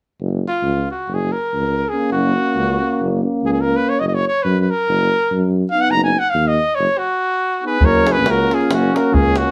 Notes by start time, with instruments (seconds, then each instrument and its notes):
0.20 tuba F#1
0.47 trumpet F4
0.63 tuba C#2
0.91 trumpet F#4
1.08 tuba F#1
1.14 trumpet G#4
1.32 trumpet A#4
1.54 tuba C#2
1.89 trumpet G#4
1.93 euphonium A#3 C#4
2.12 tuba F#1, trumpet F#4
2.35 euphonium A#3 C#4
2.56 tuba C#2
2.80 euphonium A#3 C#4
3.00 tuba F#1
3.23 euphonium A#3 C#4
3.43 tuba C#2, trumpet G#4
3.52 trumpet G#4
3.61 euphonium A#3 C#4, trumpet A#4
3.76 trumpet B4
3.89 trumpet C#5
4.00 tuba F#1, trumpet D#5
4.08 trumpet D#5
4.15 trumpet C#5
4.27 trumpet C#5
4.43 tuba F#2, trumpet B4
4.60 trumpet B4
4.70 trumpet A#4
4.88 tuba F#1
5.32 tuba F#2
5.70 euphonium B3 D#4, trumpet F5
5.81 trumpet F#5
5.90 tuba F#1, trumpet A#5
6.04 trumpet G#5
6.19 trumpet F#5
6.30 trumpet F5
6.34 tuba D#2
6.47 trumpet D#5
6.75 tuba F#1, trumpet C#5
6.98 trumpet F#4
7.62 euphonium B3 D#4, flugelhorn G#4
7.67 trumpet B4
7.80 tuba F#1, euphonium A#3 C#4, davul low
7.84 flugelhorn A#4, trumpet C#5
8.07 flugelhorn G#4, davul high
8.12 trumpet B4
8.16 davul high
8.25 tuba C#2, flugelhorn F#4, davul high
8.30 trumpet A#4
8.51 flugelhorn F4, trumpet G#4, davul high
8.61 davul high
8.69 tuba F#1, flugelhorn C#4, trumpet F#4, davul high
8.96 flugelhorn F#4, trumpet A#4, davul high
9.13 tuba C#2, flugelhorn C#4, trumpet G#4, davul low
9.36 flugelhorn C#4, trumpet F#4, davul high